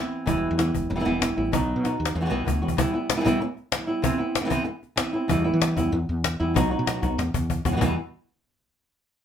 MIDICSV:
0, 0, Header, 1, 5, 480
1, 0, Start_track
1, 0, Key_signature, 1, "minor"
1, 0, Tempo, 314465
1, 412, Time_signature, 4, 2, 24, 8
1, 14107, End_track
2, 0, Start_track
2, 0, Title_t, "Nylon-string guitar"
2, 0, Program_c, 0, 24
2, 0, Note_on_c, 0, 52, 59
2, 0, Note_on_c, 0, 59, 57
2, 0, Note_on_c, 0, 60, 54
2, 0, Note_on_c, 0, 64, 70
2, 380, Note_off_c, 0, 52, 0
2, 392, Note_on_c, 0, 47, 76
2, 398, Note_on_c, 0, 52, 78
2, 399, Note_off_c, 0, 60, 0
2, 400, Note_off_c, 0, 59, 0
2, 405, Note_on_c, 0, 55, 86
2, 406, Note_off_c, 0, 64, 0
2, 419, Note_on_c, 0, 59, 89
2, 425, Note_on_c, 0, 64, 93
2, 863, Note_off_c, 0, 64, 0
2, 872, Note_off_c, 0, 47, 0
2, 875, Note_off_c, 0, 52, 0
2, 877, Note_off_c, 0, 59, 0
2, 879, Note_off_c, 0, 55, 0
2, 882, Note_on_c, 0, 64, 55
2, 895, Note_on_c, 0, 59, 52
2, 907, Note_on_c, 0, 55, 42
2, 1357, Note_off_c, 0, 55, 0
2, 1357, Note_off_c, 0, 64, 0
2, 1360, Note_off_c, 0, 59, 0
2, 1458, Note_on_c, 0, 52, 69
2, 1461, Note_on_c, 0, 55, 75
2, 1470, Note_on_c, 0, 59, 65
2, 1476, Note_on_c, 0, 64, 70
2, 1504, Note_off_c, 0, 52, 0
2, 1517, Note_off_c, 0, 55, 0
2, 1523, Note_on_c, 0, 52, 75
2, 1527, Note_off_c, 0, 59, 0
2, 1527, Note_off_c, 0, 64, 0
2, 1536, Note_on_c, 0, 55, 85
2, 1545, Note_on_c, 0, 59, 76
2, 1545, Note_on_c, 0, 64, 81
2, 1588, Note_off_c, 0, 52, 0
2, 1589, Note_off_c, 0, 55, 0
2, 1592, Note_off_c, 0, 59, 0
2, 1598, Note_off_c, 0, 64, 0
2, 1600, Note_on_c, 0, 47, 78
2, 1606, Note_on_c, 0, 52, 86
2, 1608, Note_on_c, 0, 55, 93
2, 1610, Note_on_c, 0, 59, 96
2, 1616, Note_on_c, 0, 64, 90
2, 1813, Note_off_c, 0, 52, 0
2, 1822, Note_off_c, 0, 55, 0
2, 1831, Note_on_c, 0, 52, 53
2, 1835, Note_off_c, 0, 59, 0
2, 1837, Note_off_c, 0, 47, 0
2, 1840, Note_on_c, 0, 55, 50
2, 1845, Note_off_c, 0, 64, 0
2, 1854, Note_on_c, 0, 59, 64
2, 1863, Note_on_c, 0, 64, 66
2, 2072, Note_off_c, 0, 52, 0
2, 2073, Note_off_c, 0, 64, 0
2, 2077, Note_off_c, 0, 55, 0
2, 2083, Note_off_c, 0, 59, 0
2, 2092, Note_on_c, 0, 64, 56
2, 2102, Note_on_c, 0, 59, 49
2, 2115, Note_on_c, 0, 55, 51
2, 2312, Note_off_c, 0, 59, 0
2, 2320, Note_on_c, 0, 47, 75
2, 2322, Note_off_c, 0, 64, 0
2, 2325, Note_off_c, 0, 55, 0
2, 2329, Note_on_c, 0, 54, 80
2, 2331, Note_on_c, 0, 59, 82
2, 2332, Note_on_c, 0, 63, 84
2, 2344, Note_on_c, 0, 66, 86
2, 2787, Note_off_c, 0, 66, 0
2, 2796, Note_off_c, 0, 47, 0
2, 2801, Note_off_c, 0, 54, 0
2, 2802, Note_off_c, 0, 59, 0
2, 2803, Note_off_c, 0, 63, 0
2, 2806, Note_on_c, 0, 66, 57
2, 2820, Note_on_c, 0, 63, 52
2, 2831, Note_on_c, 0, 59, 47
2, 3276, Note_off_c, 0, 59, 0
2, 3279, Note_off_c, 0, 66, 0
2, 3287, Note_off_c, 0, 63, 0
2, 3297, Note_on_c, 0, 52, 49
2, 3327, Note_off_c, 0, 52, 0
2, 3370, Note_on_c, 0, 52, 62
2, 3381, Note_on_c, 0, 55, 58
2, 3388, Note_on_c, 0, 59, 68
2, 3389, Note_on_c, 0, 66, 69
2, 3421, Note_off_c, 0, 52, 0
2, 3429, Note_off_c, 0, 55, 0
2, 3439, Note_off_c, 0, 59, 0
2, 3440, Note_on_c, 0, 52, 63
2, 3446, Note_off_c, 0, 66, 0
2, 3448, Note_on_c, 0, 55, 76
2, 3458, Note_on_c, 0, 59, 75
2, 3464, Note_on_c, 0, 66, 82
2, 3497, Note_off_c, 0, 52, 0
2, 3500, Note_off_c, 0, 55, 0
2, 3503, Note_off_c, 0, 59, 0
2, 3506, Note_on_c, 0, 47, 79
2, 3510, Note_off_c, 0, 66, 0
2, 3515, Note_on_c, 0, 52, 87
2, 3518, Note_on_c, 0, 55, 77
2, 3521, Note_on_c, 0, 59, 89
2, 3529, Note_on_c, 0, 66, 85
2, 3722, Note_off_c, 0, 52, 0
2, 3732, Note_off_c, 0, 55, 0
2, 3740, Note_on_c, 0, 52, 51
2, 3745, Note_off_c, 0, 59, 0
2, 3749, Note_off_c, 0, 47, 0
2, 3751, Note_on_c, 0, 55, 51
2, 3753, Note_off_c, 0, 66, 0
2, 3763, Note_on_c, 0, 59, 51
2, 3771, Note_on_c, 0, 66, 58
2, 3976, Note_off_c, 0, 66, 0
2, 3987, Note_off_c, 0, 52, 0
2, 3992, Note_off_c, 0, 55, 0
2, 3995, Note_on_c, 0, 66, 55
2, 3998, Note_off_c, 0, 59, 0
2, 4015, Note_on_c, 0, 59, 56
2, 4019, Note_on_c, 0, 55, 47
2, 4227, Note_on_c, 0, 47, 78
2, 4228, Note_off_c, 0, 55, 0
2, 4228, Note_on_c, 0, 52, 82
2, 4230, Note_off_c, 0, 59, 0
2, 4233, Note_off_c, 0, 66, 0
2, 4246, Note_on_c, 0, 55, 85
2, 4248, Note_on_c, 0, 59, 85
2, 4250, Note_on_c, 0, 64, 103
2, 4462, Note_off_c, 0, 64, 0
2, 4470, Note_off_c, 0, 47, 0
2, 4470, Note_off_c, 0, 52, 0
2, 4479, Note_off_c, 0, 55, 0
2, 4480, Note_off_c, 0, 59, 0
2, 4481, Note_on_c, 0, 64, 60
2, 4497, Note_on_c, 0, 59, 55
2, 4515, Note_on_c, 0, 55, 55
2, 4734, Note_off_c, 0, 55, 0
2, 4745, Note_off_c, 0, 59, 0
2, 4745, Note_off_c, 0, 64, 0
2, 4746, Note_on_c, 0, 52, 55
2, 4752, Note_on_c, 0, 55, 63
2, 4763, Note_on_c, 0, 59, 66
2, 4763, Note_on_c, 0, 64, 62
2, 4803, Note_off_c, 0, 52, 0
2, 4810, Note_off_c, 0, 55, 0
2, 4816, Note_off_c, 0, 59, 0
2, 4821, Note_on_c, 0, 52, 77
2, 4825, Note_off_c, 0, 64, 0
2, 4829, Note_on_c, 0, 55, 80
2, 4834, Note_on_c, 0, 59, 81
2, 4843, Note_on_c, 0, 64, 93
2, 4872, Note_off_c, 0, 55, 0
2, 4876, Note_off_c, 0, 52, 0
2, 4880, Note_off_c, 0, 59, 0
2, 4890, Note_off_c, 0, 64, 0
2, 4891, Note_on_c, 0, 55, 96
2, 4894, Note_on_c, 0, 52, 82
2, 4898, Note_on_c, 0, 59, 86
2, 4909, Note_on_c, 0, 64, 89
2, 4947, Note_off_c, 0, 52, 0
2, 4952, Note_off_c, 0, 55, 0
2, 4952, Note_off_c, 0, 64, 0
2, 4953, Note_on_c, 0, 47, 97
2, 4960, Note_off_c, 0, 59, 0
2, 4965, Note_on_c, 0, 52, 91
2, 4970, Note_on_c, 0, 55, 92
2, 4971, Note_on_c, 0, 64, 111
2, 4978, Note_on_c, 0, 59, 100
2, 5185, Note_off_c, 0, 47, 0
2, 5194, Note_off_c, 0, 52, 0
2, 5196, Note_off_c, 0, 55, 0
2, 5201, Note_off_c, 0, 59, 0
2, 5201, Note_off_c, 0, 64, 0
2, 5672, Note_on_c, 0, 52, 53
2, 5696, Note_on_c, 0, 55, 64
2, 5702, Note_on_c, 0, 59, 59
2, 5703, Note_on_c, 0, 64, 59
2, 5891, Note_off_c, 0, 64, 0
2, 5909, Note_on_c, 0, 64, 60
2, 5912, Note_off_c, 0, 52, 0
2, 5916, Note_off_c, 0, 59, 0
2, 5923, Note_off_c, 0, 55, 0
2, 5934, Note_on_c, 0, 59, 54
2, 5948, Note_on_c, 0, 55, 49
2, 6140, Note_on_c, 0, 48, 89
2, 6147, Note_off_c, 0, 55, 0
2, 6149, Note_off_c, 0, 59, 0
2, 6150, Note_off_c, 0, 64, 0
2, 6150, Note_on_c, 0, 52, 87
2, 6153, Note_on_c, 0, 60, 81
2, 6167, Note_on_c, 0, 59, 77
2, 6173, Note_on_c, 0, 64, 85
2, 6363, Note_off_c, 0, 64, 0
2, 6379, Note_off_c, 0, 59, 0
2, 6381, Note_on_c, 0, 64, 61
2, 6386, Note_off_c, 0, 48, 0
2, 6390, Note_off_c, 0, 52, 0
2, 6392, Note_off_c, 0, 60, 0
2, 6397, Note_on_c, 0, 59, 59
2, 6410, Note_on_c, 0, 60, 54
2, 6712, Note_off_c, 0, 60, 0
2, 6725, Note_off_c, 0, 64, 0
2, 6727, Note_off_c, 0, 59, 0
2, 6728, Note_on_c, 0, 52, 56
2, 6731, Note_on_c, 0, 60, 62
2, 6743, Note_on_c, 0, 64, 70
2, 6746, Note_on_c, 0, 59, 74
2, 6776, Note_off_c, 0, 52, 0
2, 6784, Note_off_c, 0, 60, 0
2, 6792, Note_off_c, 0, 59, 0
2, 6794, Note_on_c, 0, 52, 80
2, 6801, Note_off_c, 0, 64, 0
2, 6802, Note_on_c, 0, 60, 75
2, 6810, Note_on_c, 0, 59, 90
2, 6820, Note_on_c, 0, 64, 88
2, 6852, Note_off_c, 0, 60, 0
2, 6854, Note_off_c, 0, 52, 0
2, 6858, Note_off_c, 0, 59, 0
2, 6867, Note_on_c, 0, 48, 92
2, 6869, Note_off_c, 0, 64, 0
2, 6870, Note_on_c, 0, 60, 98
2, 6873, Note_on_c, 0, 52, 101
2, 6876, Note_on_c, 0, 59, 103
2, 6887, Note_on_c, 0, 64, 99
2, 7068, Note_off_c, 0, 48, 0
2, 7077, Note_off_c, 0, 52, 0
2, 7077, Note_off_c, 0, 60, 0
2, 7087, Note_off_c, 0, 64, 0
2, 7088, Note_off_c, 0, 59, 0
2, 7568, Note_on_c, 0, 52, 59
2, 7583, Note_on_c, 0, 60, 57
2, 7592, Note_on_c, 0, 59, 63
2, 7595, Note_on_c, 0, 64, 63
2, 7812, Note_off_c, 0, 64, 0
2, 7819, Note_off_c, 0, 52, 0
2, 7826, Note_off_c, 0, 59, 0
2, 7826, Note_off_c, 0, 60, 0
2, 7830, Note_on_c, 0, 64, 59
2, 7844, Note_on_c, 0, 59, 55
2, 7862, Note_on_c, 0, 60, 53
2, 8060, Note_on_c, 0, 47, 84
2, 8069, Note_off_c, 0, 59, 0
2, 8070, Note_off_c, 0, 64, 0
2, 8070, Note_on_c, 0, 52, 84
2, 8074, Note_off_c, 0, 60, 0
2, 8080, Note_on_c, 0, 55, 92
2, 8087, Note_on_c, 0, 59, 94
2, 8096, Note_on_c, 0, 64, 95
2, 8291, Note_off_c, 0, 64, 0
2, 8303, Note_off_c, 0, 59, 0
2, 8305, Note_off_c, 0, 47, 0
2, 8309, Note_on_c, 0, 64, 68
2, 8310, Note_off_c, 0, 52, 0
2, 8315, Note_off_c, 0, 55, 0
2, 8321, Note_on_c, 0, 59, 55
2, 8338, Note_on_c, 0, 55, 56
2, 8541, Note_off_c, 0, 55, 0
2, 8545, Note_off_c, 0, 59, 0
2, 8545, Note_on_c, 0, 52, 64
2, 8549, Note_off_c, 0, 64, 0
2, 8560, Note_on_c, 0, 55, 67
2, 8563, Note_on_c, 0, 59, 74
2, 8583, Note_on_c, 0, 64, 59
2, 8782, Note_off_c, 0, 64, 0
2, 8787, Note_off_c, 0, 52, 0
2, 8795, Note_off_c, 0, 55, 0
2, 8796, Note_off_c, 0, 59, 0
2, 8800, Note_on_c, 0, 64, 74
2, 8812, Note_on_c, 0, 59, 57
2, 8831, Note_on_c, 0, 55, 55
2, 9028, Note_off_c, 0, 55, 0
2, 9030, Note_off_c, 0, 59, 0
2, 9035, Note_off_c, 0, 64, 0
2, 9763, Note_on_c, 0, 64, 66
2, 9780, Note_on_c, 0, 59, 59
2, 9801, Note_on_c, 0, 55, 49
2, 9986, Note_off_c, 0, 59, 0
2, 9986, Note_on_c, 0, 47, 82
2, 9996, Note_off_c, 0, 64, 0
2, 9998, Note_off_c, 0, 55, 0
2, 9999, Note_on_c, 0, 54, 81
2, 10004, Note_on_c, 0, 59, 83
2, 10013, Note_on_c, 0, 63, 93
2, 10014, Note_on_c, 0, 66, 95
2, 10222, Note_off_c, 0, 66, 0
2, 10228, Note_off_c, 0, 47, 0
2, 10234, Note_off_c, 0, 54, 0
2, 10236, Note_off_c, 0, 63, 0
2, 10237, Note_off_c, 0, 59, 0
2, 10241, Note_on_c, 0, 66, 68
2, 10255, Note_on_c, 0, 63, 57
2, 10274, Note_on_c, 0, 59, 53
2, 10467, Note_off_c, 0, 59, 0
2, 10473, Note_on_c, 0, 54, 58
2, 10475, Note_off_c, 0, 66, 0
2, 10482, Note_off_c, 0, 63, 0
2, 10485, Note_on_c, 0, 59, 67
2, 10500, Note_on_c, 0, 63, 64
2, 10508, Note_on_c, 0, 66, 59
2, 10700, Note_off_c, 0, 66, 0
2, 10712, Note_off_c, 0, 54, 0
2, 10717, Note_off_c, 0, 59, 0
2, 10718, Note_off_c, 0, 63, 0
2, 10718, Note_on_c, 0, 66, 62
2, 10736, Note_on_c, 0, 63, 58
2, 10749, Note_on_c, 0, 59, 47
2, 10954, Note_off_c, 0, 66, 0
2, 10963, Note_off_c, 0, 63, 0
2, 10964, Note_off_c, 0, 59, 0
2, 11688, Note_on_c, 0, 66, 61
2, 11703, Note_on_c, 0, 59, 57
2, 11713, Note_on_c, 0, 55, 49
2, 11774, Note_off_c, 0, 55, 0
2, 11779, Note_off_c, 0, 66, 0
2, 11780, Note_off_c, 0, 59, 0
2, 11784, Note_on_c, 0, 47, 52
2, 11787, Note_on_c, 0, 52, 62
2, 11792, Note_on_c, 0, 55, 55
2, 11797, Note_on_c, 0, 66, 59
2, 11799, Note_on_c, 0, 59, 54
2, 11835, Note_off_c, 0, 52, 0
2, 11836, Note_off_c, 0, 47, 0
2, 11848, Note_off_c, 0, 55, 0
2, 11848, Note_off_c, 0, 59, 0
2, 11852, Note_off_c, 0, 66, 0
2, 11854, Note_on_c, 0, 47, 72
2, 11854, Note_on_c, 0, 52, 66
2, 11866, Note_on_c, 0, 55, 76
2, 11866, Note_on_c, 0, 59, 77
2, 11871, Note_on_c, 0, 66, 82
2, 11902, Note_off_c, 0, 47, 0
2, 11906, Note_off_c, 0, 52, 0
2, 11911, Note_off_c, 0, 55, 0
2, 11916, Note_off_c, 0, 59, 0
2, 11920, Note_on_c, 0, 47, 82
2, 11922, Note_off_c, 0, 66, 0
2, 11922, Note_on_c, 0, 40, 88
2, 11925, Note_on_c, 0, 52, 76
2, 11929, Note_on_c, 0, 55, 87
2, 11934, Note_on_c, 0, 59, 88
2, 11940, Note_on_c, 0, 66, 96
2, 12117, Note_off_c, 0, 47, 0
2, 12118, Note_off_c, 0, 40, 0
2, 12119, Note_off_c, 0, 52, 0
2, 12121, Note_off_c, 0, 55, 0
2, 12124, Note_off_c, 0, 59, 0
2, 12127, Note_off_c, 0, 66, 0
2, 14107, End_track
3, 0, Start_track
3, 0, Title_t, "Fretless electric bass"
3, 0, Program_c, 1, 35
3, 413, Note_on_c, 1, 28, 90
3, 710, Note_off_c, 1, 28, 0
3, 773, Note_on_c, 1, 40, 95
3, 1070, Note_off_c, 1, 40, 0
3, 1141, Note_on_c, 1, 28, 88
3, 1336, Note_off_c, 1, 28, 0
3, 1382, Note_on_c, 1, 28, 99
3, 1576, Note_off_c, 1, 28, 0
3, 1617, Note_on_c, 1, 28, 76
3, 2011, Note_off_c, 1, 28, 0
3, 2101, Note_on_c, 1, 33, 86
3, 2296, Note_off_c, 1, 33, 0
3, 2338, Note_on_c, 1, 35, 95
3, 2632, Note_off_c, 1, 35, 0
3, 2685, Note_on_c, 1, 47, 86
3, 2985, Note_off_c, 1, 47, 0
3, 3049, Note_on_c, 1, 39, 85
3, 3248, Note_off_c, 1, 39, 0
3, 3289, Note_on_c, 1, 40, 88
3, 3488, Note_off_c, 1, 40, 0
3, 3526, Note_on_c, 1, 35, 77
3, 3745, Note_off_c, 1, 35, 0
3, 3760, Note_on_c, 1, 38, 82
3, 3982, Note_off_c, 1, 38, 0
3, 4010, Note_on_c, 1, 40, 82
3, 4226, Note_off_c, 1, 40, 0
3, 8088, Note_on_c, 1, 40, 100
3, 8385, Note_off_c, 1, 40, 0
3, 8449, Note_on_c, 1, 52, 96
3, 8746, Note_off_c, 1, 52, 0
3, 8800, Note_on_c, 1, 40, 98
3, 9002, Note_off_c, 1, 40, 0
3, 9043, Note_on_c, 1, 40, 107
3, 9244, Note_off_c, 1, 40, 0
3, 9295, Note_on_c, 1, 40, 90
3, 9689, Note_off_c, 1, 40, 0
3, 9774, Note_on_c, 1, 40, 97
3, 9970, Note_off_c, 1, 40, 0
3, 10002, Note_on_c, 1, 35, 88
3, 10302, Note_off_c, 1, 35, 0
3, 10364, Note_on_c, 1, 47, 96
3, 10663, Note_off_c, 1, 47, 0
3, 10725, Note_on_c, 1, 35, 102
3, 10925, Note_off_c, 1, 35, 0
3, 10963, Note_on_c, 1, 40, 109
3, 11164, Note_off_c, 1, 40, 0
3, 11203, Note_on_c, 1, 40, 85
3, 11602, Note_off_c, 1, 40, 0
3, 11679, Note_on_c, 1, 40, 100
3, 11881, Note_off_c, 1, 40, 0
3, 11928, Note_on_c, 1, 40, 91
3, 12152, Note_off_c, 1, 40, 0
3, 14107, End_track
4, 0, Start_track
4, 0, Title_t, "Cajon"
4, 417, Note_on_c, 9, 36, 90
4, 569, Note_off_c, 9, 36, 0
4, 899, Note_on_c, 9, 38, 99
4, 1051, Note_off_c, 9, 38, 0
4, 1137, Note_on_c, 9, 36, 79
4, 1289, Note_off_c, 9, 36, 0
4, 1860, Note_on_c, 9, 38, 106
4, 2013, Note_off_c, 9, 38, 0
4, 2338, Note_on_c, 9, 36, 99
4, 2490, Note_off_c, 9, 36, 0
4, 2822, Note_on_c, 9, 38, 72
4, 2975, Note_off_c, 9, 38, 0
4, 3136, Note_on_c, 9, 38, 105
4, 3289, Note_off_c, 9, 38, 0
4, 3780, Note_on_c, 9, 36, 93
4, 3933, Note_off_c, 9, 36, 0
4, 4095, Note_on_c, 9, 36, 73
4, 4248, Note_off_c, 9, 36, 0
4, 4248, Note_on_c, 9, 36, 107
4, 4401, Note_off_c, 9, 36, 0
4, 4726, Note_on_c, 9, 38, 110
4, 4879, Note_off_c, 9, 38, 0
4, 4982, Note_on_c, 9, 36, 81
4, 5135, Note_off_c, 9, 36, 0
4, 5448, Note_on_c, 9, 38, 33
4, 5601, Note_off_c, 9, 38, 0
4, 5680, Note_on_c, 9, 38, 110
4, 5833, Note_off_c, 9, 38, 0
4, 6162, Note_on_c, 9, 36, 110
4, 6314, Note_off_c, 9, 36, 0
4, 6646, Note_on_c, 9, 38, 93
4, 6799, Note_off_c, 9, 38, 0
4, 6881, Note_on_c, 9, 36, 84
4, 7034, Note_off_c, 9, 36, 0
4, 7369, Note_on_c, 9, 38, 37
4, 7522, Note_off_c, 9, 38, 0
4, 7594, Note_on_c, 9, 38, 111
4, 7746, Note_off_c, 9, 38, 0
4, 8080, Note_on_c, 9, 36, 96
4, 8233, Note_off_c, 9, 36, 0
4, 8572, Note_on_c, 9, 38, 110
4, 8725, Note_off_c, 9, 38, 0
4, 8813, Note_on_c, 9, 36, 81
4, 8966, Note_off_c, 9, 36, 0
4, 9294, Note_on_c, 9, 38, 37
4, 9447, Note_off_c, 9, 38, 0
4, 9529, Note_on_c, 9, 38, 107
4, 9682, Note_off_c, 9, 38, 0
4, 10015, Note_on_c, 9, 36, 112
4, 10168, Note_off_c, 9, 36, 0
4, 10492, Note_on_c, 9, 38, 105
4, 10645, Note_off_c, 9, 38, 0
4, 10730, Note_on_c, 9, 36, 83
4, 10730, Note_on_c, 9, 38, 33
4, 10883, Note_off_c, 9, 36, 0
4, 10883, Note_off_c, 9, 38, 0
4, 10974, Note_on_c, 9, 38, 82
4, 11126, Note_off_c, 9, 38, 0
4, 11209, Note_on_c, 9, 36, 98
4, 11361, Note_off_c, 9, 36, 0
4, 11445, Note_on_c, 9, 36, 83
4, 11598, Note_off_c, 9, 36, 0
4, 11680, Note_on_c, 9, 36, 96
4, 11832, Note_off_c, 9, 36, 0
4, 11924, Note_on_c, 9, 36, 104
4, 12077, Note_off_c, 9, 36, 0
4, 14107, End_track
5, 0, Start_track
5, 0, Title_t, "Muted nylon-string guitar strokes"
5, 1372, Note_on_c, 9, 29, 84
5, 1525, Note_off_c, 9, 29, 0
5, 3286, Note_on_c, 9, 29, 65
5, 3438, Note_off_c, 9, 29, 0
5, 5203, Note_on_c, 9, 29, 66
5, 5356, Note_off_c, 9, 29, 0
5, 7087, Note_on_c, 9, 29, 70
5, 7239, Note_off_c, 9, 29, 0
5, 9038, Note_on_c, 9, 29, 76
5, 9190, Note_off_c, 9, 29, 0
5, 10967, Note_on_c, 9, 29, 69
5, 11119, Note_off_c, 9, 29, 0
5, 14107, End_track
0, 0, End_of_file